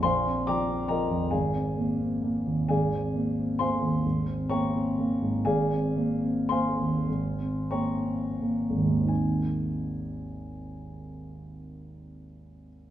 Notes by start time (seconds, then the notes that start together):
0.03 A#1 C5 F5 G#5 C6
0.26 C4
0.47 F3 D5 G5 A#5 D6
0.69 C4
0.88 F3 A#4 D#5 G5 A#5
1.10 F2
1.31 G#1 G#4 D5 F5 G#5
1.54 C4
1.77 A#3
2.01 C4
2.23 A#3
2.47 D#2
2.68 G#1 G#4 D5 F5 G#5
2.93 C4
3.14 A#3
3.39 C4
3.59 A#3 C5 F5 G#5 C6
3.82 D#2
4.06 G#1
4.27 C4
4.49 A#3 C#5 G5 A#5 C#6
4.75 C4
4.98 A#3
5.22 G#2
5.45 G#1 G#4 D5 F5 G#5
5.70 C4
5.96 A#3
6.23 C4
6.49 A#3 C5 F5 G#5 C6
6.79 D#2
7.09 G#1
7.40 C4
7.71 A#3 C#5 G5 A#5 C#6
8.05 C4
8.41 A#3
8.70 G#1
8.76 D#2 G#2
8.83 G#3
8.89 A#3
8.96 C4
9.03 D#4
9.08 G#5